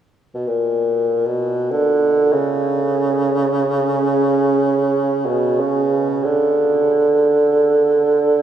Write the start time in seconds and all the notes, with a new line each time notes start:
0.34 B2
0.47 A#2
1.25 B2
1.71 D3
2.33 C#3
5.26 B2
5.60 C#3
6.24 D3